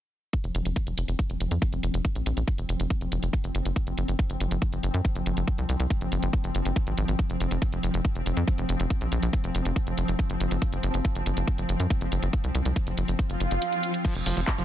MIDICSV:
0, 0, Header, 1, 7, 480
1, 0, Start_track
1, 0, Tempo, 428571
1, 373, Time_signature, 4, 2, 24, 8
1, 16405, End_track
2, 0, Start_track
2, 0, Title_t, "Analog synth pad"
2, 0, Program_c, 0, 89
2, 15732, Note_on_c, 0, 60, 77
2, 15868, Note_on_c, 0, 65, 82
2, 15881, Note_on_c, 0, 84, 81
2, 15954, Note_on_c, 0, 77, 79
2, 16405, Note_off_c, 0, 60, 0
2, 16405, Note_off_c, 0, 65, 0
2, 16405, Note_off_c, 0, 77, 0
2, 16405, Note_off_c, 0, 84, 0
2, 16405, End_track
3, 0, Start_track
3, 0, Title_t, "Synth texture"
3, 0, Program_c, 1, 99
3, 373, Note_on_c, 1, 53, 75
3, 373, Note_on_c, 1, 60, 79
3, 15719, Note_off_c, 1, 53, 0
3, 15719, Note_off_c, 1, 60, 0
3, 15733, Note_on_c, 1, 53, 76
3, 15733, Note_on_c, 1, 60, 74
3, 16405, Note_off_c, 1, 53, 0
3, 16405, Note_off_c, 1, 60, 0
3, 16405, End_track
4, 0, Start_track
4, 0, Title_t, "Acid bass"
4, 0, Program_c, 2, 38
4, 15733, Note_on_c, 2, 53, 82
4, 15842, Note_off_c, 2, 53, 0
4, 15973, Note_on_c, 2, 53, 81
4, 16082, Note_off_c, 2, 53, 0
4, 16093, Note_on_c, 2, 53, 80
4, 16136, Note_off_c, 2, 53, 0
4, 16333, Note_on_c, 2, 53, 78
4, 16405, Note_off_c, 2, 53, 0
4, 16405, End_track
5, 0, Start_track
5, 0, Title_t, "Analog synth bass"
5, 0, Program_c, 3, 38
5, 493, Note_on_c, 3, 29, 81
5, 573, Note_off_c, 3, 29, 0
5, 613, Note_on_c, 3, 29, 104
5, 694, Note_off_c, 3, 29, 0
5, 733, Note_on_c, 3, 29, 85
5, 813, Note_off_c, 3, 29, 0
5, 973, Note_on_c, 3, 29, 83
5, 1053, Note_off_c, 3, 29, 0
5, 1093, Note_on_c, 3, 29, 96
5, 1173, Note_off_c, 3, 29, 0
5, 1213, Note_on_c, 3, 29, 90
5, 1294, Note_off_c, 3, 29, 0
5, 1453, Note_on_c, 3, 29, 82
5, 1534, Note_off_c, 3, 29, 0
5, 1573, Note_on_c, 3, 29, 93
5, 1654, Note_off_c, 3, 29, 0
5, 1693, Note_on_c, 3, 41, 90
5, 1773, Note_off_c, 3, 41, 0
5, 1933, Note_on_c, 3, 29, 88
5, 2013, Note_off_c, 3, 29, 0
5, 2053, Note_on_c, 3, 29, 98
5, 2133, Note_off_c, 3, 29, 0
5, 2173, Note_on_c, 3, 29, 91
5, 2253, Note_off_c, 3, 29, 0
5, 2413, Note_on_c, 3, 34, 86
5, 2493, Note_off_c, 3, 34, 0
5, 2533, Note_on_c, 3, 34, 100
5, 2614, Note_off_c, 3, 34, 0
5, 2653, Note_on_c, 3, 34, 92
5, 2733, Note_off_c, 3, 34, 0
5, 2893, Note_on_c, 3, 29, 86
5, 2973, Note_off_c, 3, 29, 0
5, 3013, Note_on_c, 3, 29, 95
5, 3093, Note_off_c, 3, 29, 0
5, 3133, Note_on_c, 3, 29, 95
5, 3214, Note_off_c, 3, 29, 0
5, 3373, Note_on_c, 3, 29, 84
5, 3453, Note_off_c, 3, 29, 0
5, 3493, Note_on_c, 3, 29, 93
5, 3573, Note_off_c, 3, 29, 0
5, 3612, Note_on_c, 3, 29, 87
5, 3693, Note_off_c, 3, 29, 0
5, 3853, Note_on_c, 3, 30, 88
5, 3933, Note_off_c, 3, 30, 0
5, 3973, Note_on_c, 3, 30, 99
5, 4053, Note_off_c, 3, 30, 0
5, 4092, Note_on_c, 3, 30, 86
5, 4173, Note_off_c, 3, 30, 0
5, 4333, Note_on_c, 3, 30, 87
5, 4413, Note_off_c, 3, 30, 0
5, 4453, Note_on_c, 3, 30, 102
5, 4533, Note_off_c, 3, 30, 0
5, 4573, Note_on_c, 3, 30, 90
5, 4653, Note_off_c, 3, 30, 0
5, 4812, Note_on_c, 3, 30, 82
5, 4893, Note_off_c, 3, 30, 0
5, 4932, Note_on_c, 3, 30, 98
5, 5013, Note_off_c, 3, 30, 0
5, 5053, Note_on_c, 3, 30, 96
5, 5133, Note_off_c, 3, 30, 0
5, 5292, Note_on_c, 3, 30, 82
5, 5373, Note_off_c, 3, 30, 0
5, 5412, Note_on_c, 3, 30, 96
5, 5493, Note_off_c, 3, 30, 0
5, 5533, Note_on_c, 3, 42, 92
5, 5613, Note_off_c, 3, 42, 0
5, 5773, Note_on_c, 3, 30, 87
5, 5853, Note_off_c, 3, 30, 0
5, 5892, Note_on_c, 3, 30, 100
5, 5973, Note_off_c, 3, 30, 0
5, 6013, Note_on_c, 3, 30, 92
5, 6093, Note_off_c, 3, 30, 0
5, 6253, Note_on_c, 3, 36, 85
5, 6333, Note_off_c, 3, 36, 0
5, 6373, Note_on_c, 3, 36, 98
5, 6453, Note_off_c, 3, 36, 0
5, 6492, Note_on_c, 3, 36, 89
5, 6573, Note_off_c, 3, 36, 0
5, 6733, Note_on_c, 3, 30, 82
5, 6813, Note_off_c, 3, 30, 0
5, 6853, Note_on_c, 3, 30, 102
5, 6933, Note_off_c, 3, 30, 0
5, 6973, Note_on_c, 3, 30, 98
5, 7053, Note_off_c, 3, 30, 0
5, 7213, Note_on_c, 3, 30, 83
5, 7293, Note_off_c, 3, 30, 0
5, 7333, Note_on_c, 3, 30, 94
5, 7414, Note_off_c, 3, 30, 0
5, 7453, Note_on_c, 3, 30, 88
5, 7534, Note_off_c, 3, 30, 0
5, 7693, Note_on_c, 3, 32, 85
5, 7774, Note_off_c, 3, 32, 0
5, 7813, Note_on_c, 3, 32, 98
5, 7894, Note_off_c, 3, 32, 0
5, 7933, Note_on_c, 3, 32, 86
5, 8013, Note_off_c, 3, 32, 0
5, 8173, Note_on_c, 3, 29, 85
5, 8254, Note_off_c, 3, 29, 0
5, 8293, Note_on_c, 3, 29, 104
5, 8373, Note_off_c, 3, 29, 0
5, 8413, Note_on_c, 3, 29, 93
5, 8493, Note_off_c, 3, 29, 0
5, 8653, Note_on_c, 3, 29, 83
5, 8734, Note_off_c, 3, 29, 0
5, 8773, Note_on_c, 3, 29, 100
5, 8853, Note_off_c, 3, 29, 0
5, 8893, Note_on_c, 3, 29, 98
5, 8973, Note_off_c, 3, 29, 0
5, 9133, Note_on_c, 3, 29, 83
5, 9213, Note_off_c, 3, 29, 0
5, 9253, Note_on_c, 3, 29, 97
5, 9333, Note_off_c, 3, 29, 0
5, 9372, Note_on_c, 3, 41, 93
5, 9453, Note_off_c, 3, 41, 0
5, 9613, Note_on_c, 3, 29, 87
5, 9693, Note_off_c, 3, 29, 0
5, 9733, Note_on_c, 3, 29, 95
5, 9813, Note_off_c, 3, 29, 0
5, 9853, Note_on_c, 3, 29, 92
5, 9933, Note_off_c, 3, 29, 0
5, 10093, Note_on_c, 3, 34, 85
5, 10173, Note_off_c, 3, 34, 0
5, 10213, Note_on_c, 3, 34, 99
5, 10293, Note_off_c, 3, 34, 0
5, 10332, Note_on_c, 3, 34, 95
5, 10413, Note_off_c, 3, 34, 0
5, 10573, Note_on_c, 3, 29, 85
5, 10653, Note_off_c, 3, 29, 0
5, 10692, Note_on_c, 3, 29, 99
5, 10773, Note_off_c, 3, 29, 0
5, 10812, Note_on_c, 3, 29, 92
5, 10893, Note_off_c, 3, 29, 0
5, 11053, Note_on_c, 3, 29, 85
5, 11133, Note_off_c, 3, 29, 0
5, 11172, Note_on_c, 3, 29, 93
5, 11253, Note_off_c, 3, 29, 0
5, 11292, Note_on_c, 3, 29, 86
5, 11373, Note_off_c, 3, 29, 0
5, 11532, Note_on_c, 3, 30, 87
5, 11613, Note_off_c, 3, 30, 0
5, 11652, Note_on_c, 3, 30, 101
5, 11733, Note_off_c, 3, 30, 0
5, 11772, Note_on_c, 3, 30, 92
5, 11853, Note_off_c, 3, 30, 0
5, 12012, Note_on_c, 3, 30, 84
5, 12093, Note_off_c, 3, 30, 0
5, 12133, Note_on_c, 3, 30, 104
5, 12213, Note_off_c, 3, 30, 0
5, 12253, Note_on_c, 3, 30, 88
5, 12333, Note_off_c, 3, 30, 0
5, 12493, Note_on_c, 3, 30, 89
5, 12573, Note_off_c, 3, 30, 0
5, 12613, Note_on_c, 3, 30, 100
5, 12694, Note_off_c, 3, 30, 0
5, 12733, Note_on_c, 3, 30, 91
5, 12813, Note_off_c, 3, 30, 0
5, 12973, Note_on_c, 3, 30, 84
5, 13053, Note_off_c, 3, 30, 0
5, 13093, Note_on_c, 3, 30, 94
5, 13173, Note_off_c, 3, 30, 0
5, 13213, Note_on_c, 3, 42, 91
5, 13293, Note_off_c, 3, 42, 0
5, 13453, Note_on_c, 3, 30, 91
5, 13533, Note_off_c, 3, 30, 0
5, 13573, Note_on_c, 3, 30, 100
5, 13653, Note_off_c, 3, 30, 0
5, 13692, Note_on_c, 3, 30, 92
5, 13773, Note_off_c, 3, 30, 0
5, 13932, Note_on_c, 3, 36, 83
5, 14013, Note_off_c, 3, 36, 0
5, 14052, Note_on_c, 3, 36, 98
5, 14133, Note_off_c, 3, 36, 0
5, 14173, Note_on_c, 3, 36, 91
5, 14253, Note_off_c, 3, 36, 0
5, 14413, Note_on_c, 3, 30, 86
5, 14493, Note_off_c, 3, 30, 0
5, 14532, Note_on_c, 3, 30, 98
5, 14613, Note_off_c, 3, 30, 0
5, 14653, Note_on_c, 3, 30, 92
5, 14733, Note_off_c, 3, 30, 0
5, 14892, Note_on_c, 3, 30, 83
5, 14973, Note_off_c, 3, 30, 0
5, 15012, Note_on_c, 3, 30, 96
5, 15093, Note_off_c, 3, 30, 0
5, 15132, Note_on_c, 3, 30, 93
5, 15213, Note_off_c, 3, 30, 0
5, 15852, Note_on_c, 3, 29, 86
5, 15933, Note_off_c, 3, 29, 0
5, 15972, Note_on_c, 3, 29, 102
5, 16053, Note_off_c, 3, 29, 0
5, 16093, Note_on_c, 3, 29, 92
5, 16173, Note_off_c, 3, 29, 0
5, 16333, Note_on_c, 3, 29, 87
5, 16405, Note_off_c, 3, 29, 0
5, 16405, End_track
6, 0, Start_track
6, 0, Title_t, "Swell"
6, 0, Program_c, 4, 103
6, 14772, Note_on_c, 4, 60, 74
6, 15732, Note_off_c, 4, 60, 0
6, 16405, End_track
7, 0, Start_track
7, 0, Title_t, "Drums"
7, 373, Note_on_c, 9, 36, 109
7, 373, Note_on_c, 9, 42, 80
7, 485, Note_off_c, 9, 36, 0
7, 485, Note_off_c, 9, 42, 0
7, 493, Note_on_c, 9, 42, 38
7, 605, Note_off_c, 9, 42, 0
7, 613, Note_on_c, 9, 42, 77
7, 725, Note_off_c, 9, 42, 0
7, 733, Note_on_c, 9, 42, 51
7, 845, Note_off_c, 9, 42, 0
7, 853, Note_on_c, 9, 36, 114
7, 853, Note_on_c, 9, 42, 84
7, 965, Note_off_c, 9, 36, 0
7, 965, Note_off_c, 9, 42, 0
7, 972, Note_on_c, 9, 42, 40
7, 1084, Note_off_c, 9, 42, 0
7, 1093, Note_on_c, 9, 42, 89
7, 1205, Note_off_c, 9, 42, 0
7, 1213, Note_on_c, 9, 42, 53
7, 1325, Note_off_c, 9, 42, 0
7, 1333, Note_on_c, 9, 36, 112
7, 1333, Note_on_c, 9, 42, 77
7, 1445, Note_off_c, 9, 36, 0
7, 1445, Note_off_c, 9, 42, 0
7, 1453, Note_on_c, 9, 42, 37
7, 1565, Note_off_c, 9, 42, 0
7, 1573, Note_on_c, 9, 42, 76
7, 1685, Note_off_c, 9, 42, 0
7, 1693, Note_on_c, 9, 42, 56
7, 1805, Note_off_c, 9, 42, 0
7, 1813, Note_on_c, 9, 36, 108
7, 1813, Note_on_c, 9, 42, 77
7, 1925, Note_off_c, 9, 36, 0
7, 1925, Note_off_c, 9, 42, 0
7, 1933, Note_on_c, 9, 42, 36
7, 2045, Note_off_c, 9, 42, 0
7, 2053, Note_on_c, 9, 42, 74
7, 2165, Note_off_c, 9, 42, 0
7, 2173, Note_on_c, 9, 42, 54
7, 2285, Note_off_c, 9, 42, 0
7, 2293, Note_on_c, 9, 36, 118
7, 2293, Note_on_c, 9, 42, 81
7, 2405, Note_off_c, 9, 36, 0
7, 2405, Note_off_c, 9, 42, 0
7, 2413, Note_on_c, 9, 42, 37
7, 2525, Note_off_c, 9, 42, 0
7, 2533, Note_on_c, 9, 42, 81
7, 2645, Note_off_c, 9, 42, 0
7, 2653, Note_on_c, 9, 42, 50
7, 2765, Note_off_c, 9, 42, 0
7, 2773, Note_on_c, 9, 36, 124
7, 2773, Note_on_c, 9, 42, 76
7, 2885, Note_off_c, 9, 36, 0
7, 2885, Note_off_c, 9, 42, 0
7, 2893, Note_on_c, 9, 42, 37
7, 3005, Note_off_c, 9, 42, 0
7, 3013, Note_on_c, 9, 42, 81
7, 3125, Note_off_c, 9, 42, 0
7, 3133, Note_on_c, 9, 42, 53
7, 3245, Note_off_c, 9, 42, 0
7, 3252, Note_on_c, 9, 36, 123
7, 3253, Note_on_c, 9, 42, 78
7, 3364, Note_off_c, 9, 36, 0
7, 3365, Note_off_c, 9, 42, 0
7, 3373, Note_on_c, 9, 42, 34
7, 3485, Note_off_c, 9, 42, 0
7, 3493, Note_on_c, 9, 42, 74
7, 3605, Note_off_c, 9, 42, 0
7, 3613, Note_on_c, 9, 42, 55
7, 3725, Note_off_c, 9, 42, 0
7, 3733, Note_on_c, 9, 36, 119
7, 3733, Note_on_c, 9, 42, 78
7, 3845, Note_off_c, 9, 36, 0
7, 3845, Note_off_c, 9, 42, 0
7, 3853, Note_on_c, 9, 42, 38
7, 3965, Note_off_c, 9, 42, 0
7, 3973, Note_on_c, 9, 42, 74
7, 4085, Note_off_c, 9, 42, 0
7, 4093, Note_on_c, 9, 42, 52
7, 4205, Note_off_c, 9, 42, 0
7, 4213, Note_on_c, 9, 36, 124
7, 4213, Note_on_c, 9, 42, 75
7, 4325, Note_off_c, 9, 36, 0
7, 4325, Note_off_c, 9, 42, 0
7, 4333, Note_on_c, 9, 42, 37
7, 4445, Note_off_c, 9, 42, 0
7, 4453, Note_on_c, 9, 42, 74
7, 4565, Note_off_c, 9, 42, 0
7, 4573, Note_on_c, 9, 42, 50
7, 4685, Note_off_c, 9, 42, 0
7, 4693, Note_on_c, 9, 36, 127
7, 4693, Note_on_c, 9, 42, 76
7, 4805, Note_off_c, 9, 36, 0
7, 4805, Note_off_c, 9, 42, 0
7, 4813, Note_on_c, 9, 42, 37
7, 4925, Note_off_c, 9, 42, 0
7, 4933, Note_on_c, 9, 42, 77
7, 5045, Note_off_c, 9, 42, 0
7, 5053, Note_on_c, 9, 42, 50
7, 5165, Note_off_c, 9, 42, 0
7, 5173, Note_on_c, 9, 36, 122
7, 5173, Note_on_c, 9, 42, 76
7, 5285, Note_off_c, 9, 36, 0
7, 5285, Note_off_c, 9, 42, 0
7, 5293, Note_on_c, 9, 42, 35
7, 5405, Note_off_c, 9, 42, 0
7, 5413, Note_on_c, 9, 42, 69
7, 5525, Note_off_c, 9, 42, 0
7, 5533, Note_on_c, 9, 42, 51
7, 5645, Note_off_c, 9, 42, 0
7, 5653, Note_on_c, 9, 36, 117
7, 5653, Note_on_c, 9, 42, 74
7, 5765, Note_off_c, 9, 36, 0
7, 5765, Note_off_c, 9, 42, 0
7, 5773, Note_on_c, 9, 42, 34
7, 5885, Note_off_c, 9, 42, 0
7, 5893, Note_on_c, 9, 42, 69
7, 6005, Note_off_c, 9, 42, 0
7, 6013, Note_on_c, 9, 42, 51
7, 6125, Note_off_c, 9, 42, 0
7, 6132, Note_on_c, 9, 42, 72
7, 6133, Note_on_c, 9, 36, 122
7, 6244, Note_off_c, 9, 42, 0
7, 6245, Note_off_c, 9, 36, 0
7, 6253, Note_on_c, 9, 42, 36
7, 6365, Note_off_c, 9, 42, 0
7, 6372, Note_on_c, 9, 42, 75
7, 6484, Note_off_c, 9, 42, 0
7, 6492, Note_on_c, 9, 42, 49
7, 6604, Note_off_c, 9, 42, 0
7, 6612, Note_on_c, 9, 42, 75
7, 6613, Note_on_c, 9, 36, 127
7, 6724, Note_off_c, 9, 42, 0
7, 6725, Note_off_c, 9, 36, 0
7, 6733, Note_on_c, 9, 42, 36
7, 6845, Note_off_c, 9, 42, 0
7, 6852, Note_on_c, 9, 42, 76
7, 6964, Note_off_c, 9, 42, 0
7, 6972, Note_on_c, 9, 42, 50
7, 7084, Note_off_c, 9, 42, 0
7, 7092, Note_on_c, 9, 42, 75
7, 7093, Note_on_c, 9, 36, 120
7, 7204, Note_off_c, 9, 42, 0
7, 7205, Note_off_c, 9, 36, 0
7, 7212, Note_on_c, 9, 42, 35
7, 7324, Note_off_c, 9, 42, 0
7, 7332, Note_on_c, 9, 42, 67
7, 7444, Note_off_c, 9, 42, 0
7, 7452, Note_on_c, 9, 42, 49
7, 7564, Note_off_c, 9, 42, 0
7, 7572, Note_on_c, 9, 42, 76
7, 7573, Note_on_c, 9, 36, 117
7, 7684, Note_off_c, 9, 42, 0
7, 7685, Note_off_c, 9, 36, 0
7, 7692, Note_on_c, 9, 42, 34
7, 7804, Note_off_c, 9, 42, 0
7, 7812, Note_on_c, 9, 42, 73
7, 7924, Note_off_c, 9, 42, 0
7, 7932, Note_on_c, 9, 42, 50
7, 8044, Note_off_c, 9, 42, 0
7, 8052, Note_on_c, 9, 42, 74
7, 8053, Note_on_c, 9, 36, 114
7, 8164, Note_off_c, 9, 42, 0
7, 8165, Note_off_c, 9, 36, 0
7, 8173, Note_on_c, 9, 42, 37
7, 8285, Note_off_c, 9, 42, 0
7, 8292, Note_on_c, 9, 42, 74
7, 8404, Note_off_c, 9, 42, 0
7, 8412, Note_on_c, 9, 42, 50
7, 8524, Note_off_c, 9, 42, 0
7, 8532, Note_on_c, 9, 42, 74
7, 8533, Note_on_c, 9, 36, 123
7, 8644, Note_off_c, 9, 42, 0
7, 8645, Note_off_c, 9, 36, 0
7, 8652, Note_on_c, 9, 42, 37
7, 8764, Note_off_c, 9, 42, 0
7, 8772, Note_on_c, 9, 42, 83
7, 8884, Note_off_c, 9, 42, 0
7, 8892, Note_on_c, 9, 42, 51
7, 9004, Note_off_c, 9, 42, 0
7, 9012, Note_on_c, 9, 42, 73
7, 9013, Note_on_c, 9, 36, 120
7, 9124, Note_off_c, 9, 42, 0
7, 9125, Note_off_c, 9, 36, 0
7, 9132, Note_on_c, 9, 42, 33
7, 9244, Note_off_c, 9, 42, 0
7, 9252, Note_on_c, 9, 42, 72
7, 9364, Note_off_c, 9, 42, 0
7, 9372, Note_on_c, 9, 42, 51
7, 9484, Note_off_c, 9, 42, 0
7, 9492, Note_on_c, 9, 42, 75
7, 9493, Note_on_c, 9, 36, 110
7, 9604, Note_off_c, 9, 42, 0
7, 9605, Note_off_c, 9, 36, 0
7, 9612, Note_on_c, 9, 42, 35
7, 9724, Note_off_c, 9, 42, 0
7, 9732, Note_on_c, 9, 42, 71
7, 9844, Note_off_c, 9, 42, 0
7, 9852, Note_on_c, 9, 42, 50
7, 9964, Note_off_c, 9, 42, 0
7, 9972, Note_on_c, 9, 36, 113
7, 9972, Note_on_c, 9, 42, 79
7, 10084, Note_off_c, 9, 36, 0
7, 10084, Note_off_c, 9, 42, 0
7, 10092, Note_on_c, 9, 42, 36
7, 10204, Note_off_c, 9, 42, 0
7, 10212, Note_on_c, 9, 42, 76
7, 10324, Note_off_c, 9, 42, 0
7, 10332, Note_on_c, 9, 42, 50
7, 10444, Note_off_c, 9, 42, 0
7, 10452, Note_on_c, 9, 36, 118
7, 10452, Note_on_c, 9, 42, 75
7, 10564, Note_off_c, 9, 36, 0
7, 10564, Note_off_c, 9, 42, 0
7, 10572, Note_on_c, 9, 42, 38
7, 10684, Note_off_c, 9, 42, 0
7, 10692, Note_on_c, 9, 42, 82
7, 10804, Note_off_c, 9, 42, 0
7, 10812, Note_on_c, 9, 42, 51
7, 10924, Note_off_c, 9, 42, 0
7, 10932, Note_on_c, 9, 36, 113
7, 10932, Note_on_c, 9, 42, 81
7, 11044, Note_off_c, 9, 36, 0
7, 11044, Note_off_c, 9, 42, 0
7, 11052, Note_on_c, 9, 42, 35
7, 11164, Note_off_c, 9, 42, 0
7, 11172, Note_on_c, 9, 42, 74
7, 11284, Note_off_c, 9, 42, 0
7, 11293, Note_on_c, 9, 42, 52
7, 11405, Note_off_c, 9, 42, 0
7, 11413, Note_on_c, 9, 36, 111
7, 11413, Note_on_c, 9, 42, 77
7, 11525, Note_off_c, 9, 36, 0
7, 11525, Note_off_c, 9, 42, 0
7, 11533, Note_on_c, 9, 42, 37
7, 11645, Note_off_c, 9, 42, 0
7, 11653, Note_on_c, 9, 42, 74
7, 11765, Note_off_c, 9, 42, 0
7, 11773, Note_on_c, 9, 42, 54
7, 11885, Note_off_c, 9, 42, 0
7, 11893, Note_on_c, 9, 36, 108
7, 11893, Note_on_c, 9, 42, 85
7, 12005, Note_off_c, 9, 36, 0
7, 12005, Note_off_c, 9, 42, 0
7, 12013, Note_on_c, 9, 42, 39
7, 12125, Note_off_c, 9, 42, 0
7, 12132, Note_on_c, 9, 42, 81
7, 12244, Note_off_c, 9, 42, 0
7, 12252, Note_on_c, 9, 42, 53
7, 12364, Note_off_c, 9, 42, 0
7, 12372, Note_on_c, 9, 42, 81
7, 12373, Note_on_c, 9, 36, 115
7, 12484, Note_off_c, 9, 42, 0
7, 12485, Note_off_c, 9, 36, 0
7, 12493, Note_on_c, 9, 42, 38
7, 12605, Note_off_c, 9, 42, 0
7, 12613, Note_on_c, 9, 42, 82
7, 12725, Note_off_c, 9, 42, 0
7, 12732, Note_on_c, 9, 42, 55
7, 12844, Note_off_c, 9, 42, 0
7, 12852, Note_on_c, 9, 42, 80
7, 12853, Note_on_c, 9, 36, 115
7, 12964, Note_off_c, 9, 42, 0
7, 12965, Note_off_c, 9, 36, 0
7, 12973, Note_on_c, 9, 42, 37
7, 13085, Note_off_c, 9, 42, 0
7, 13093, Note_on_c, 9, 42, 73
7, 13205, Note_off_c, 9, 42, 0
7, 13212, Note_on_c, 9, 42, 57
7, 13324, Note_off_c, 9, 42, 0
7, 13332, Note_on_c, 9, 42, 79
7, 13333, Note_on_c, 9, 36, 104
7, 13444, Note_off_c, 9, 42, 0
7, 13445, Note_off_c, 9, 36, 0
7, 13453, Note_on_c, 9, 42, 39
7, 13565, Note_off_c, 9, 42, 0
7, 13573, Note_on_c, 9, 42, 79
7, 13685, Note_off_c, 9, 42, 0
7, 13693, Note_on_c, 9, 42, 55
7, 13805, Note_off_c, 9, 42, 0
7, 13812, Note_on_c, 9, 42, 83
7, 13813, Note_on_c, 9, 36, 114
7, 13924, Note_off_c, 9, 42, 0
7, 13925, Note_off_c, 9, 36, 0
7, 13932, Note_on_c, 9, 42, 41
7, 14044, Note_off_c, 9, 42, 0
7, 14052, Note_on_c, 9, 42, 83
7, 14164, Note_off_c, 9, 42, 0
7, 14172, Note_on_c, 9, 42, 54
7, 14284, Note_off_c, 9, 42, 0
7, 14292, Note_on_c, 9, 36, 115
7, 14292, Note_on_c, 9, 42, 79
7, 14404, Note_off_c, 9, 36, 0
7, 14404, Note_off_c, 9, 42, 0
7, 14412, Note_on_c, 9, 42, 40
7, 14524, Note_off_c, 9, 42, 0
7, 14532, Note_on_c, 9, 42, 84
7, 14644, Note_off_c, 9, 42, 0
7, 14652, Note_on_c, 9, 42, 58
7, 14764, Note_off_c, 9, 42, 0
7, 14772, Note_on_c, 9, 36, 115
7, 14772, Note_on_c, 9, 42, 82
7, 14884, Note_off_c, 9, 36, 0
7, 14884, Note_off_c, 9, 42, 0
7, 14892, Note_on_c, 9, 42, 37
7, 15004, Note_off_c, 9, 42, 0
7, 15012, Note_on_c, 9, 42, 78
7, 15124, Note_off_c, 9, 42, 0
7, 15132, Note_on_c, 9, 42, 55
7, 15244, Note_off_c, 9, 42, 0
7, 15252, Note_on_c, 9, 42, 85
7, 15364, Note_off_c, 9, 42, 0
7, 15372, Note_on_c, 9, 42, 38
7, 15484, Note_off_c, 9, 42, 0
7, 15492, Note_on_c, 9, 42, 78
7, 15604, Note_off_c, 9, 42, 0
7, 15612, Note_on_c, 9, 42, 59
7, 15724, Note_off_c, 9, 42, 0
7, 15732, Note_on_c, 9, 42, 86
7, 15732, Note_on_c, 9, 49, 99
7, 15733, Note_on_c, 9, 36, 123
7, 15844, Note_off_c, 9, 42, 0
7, 15844, Note_off_c, 9, 49, 0
7, 15845, Note_off_c, 9, 36, 0
7, 15852, Note_on_c, 9, 42, 58
7, 15964, Note_off_c, 9, 42, 0
7, 15972, Note_on_c, 9, 46, 101
7, 16084, Note_off_c, 9, 46, 0
7, 16092, Note_on_c, 9, 42, 55
7, 16204, Note_off_c, 9, 42, 0
7, 16212, Note_on_c, 9, 39, 123
7, 16212, Note_on_c, 9, 42, 80
7, 16213, Note_on_c, 9, 36, 121
7, 16324, Note_off_c, 9, 39, 0
7, 16324, Note_off_c, 9, 42, 0
7, 16325, Note_off_c, 9, 36, 0
7, 16333, Note_on_c, 9, 42, 55
7, 16405, Note_off_c, 9, 42, 0
7, 16405, End_track
0, 0, End_of_file